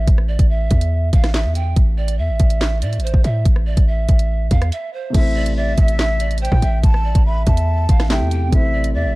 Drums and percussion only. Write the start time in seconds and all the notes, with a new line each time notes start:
0.07 kick, closed hi-hat
0.18 cross-stick
0.39 kick, closed hi-hat
0.71 kick, closed hi-hat
0.81 closed hi-hat
1.13 kick, closed hi-hat
1.24 cross-stick, snare, closed hi-hat
1.34 snare, clap, closed hi-hat
1.55 closed hi-hat
1.76 kick, closed hi-hat
2.08 closed hi-hat
2.40 kick, closed hi-hat
2.50 closed hi-hat
2.61 snare, clap
2.82 closed hi-hat
2.93 closed hi-hat
3.00 closed hi-hat
3.07 closed hi-hat
3.14 kick
3.24 closed hi-hat
3.45 kick, closed hi-hat
3.56 cross-stick
3.77 kick, closed hi-hat
4.09 kick, closed hi-hat
4.19 closed hi-hat
4.51 kick, closed hi-hat
4.62 cross-stick, closed hi-hat
4.72 closed hi-hat
5.14 kick, closed hi-hat, crash
5.46 closed hi-hat
5.78 kick, closed hi-hat
5.88 closed hi-hat
5.99 snare, clap
6.20 closed hi-hat
6.31 closed hi-hat
6.38 closed hi-hat
6.45 closed hi-hat
6.52 kick
6.62 closed hi-hat
6.84 kick, closed hi-hat
6.94 cross-stick
7.15 kick, closed hi-hat
7.47 kick, closed hi-hat
7.57 closed hi-hat
7.89 kick, closed hi-hat
8.00 cross-stick, snare, closed hi-hat
8.10 snare, clap, closed hi-hat
8.31 closed hi-hat
8.53 kick, closed hi-hat
8.84 closed hi-hat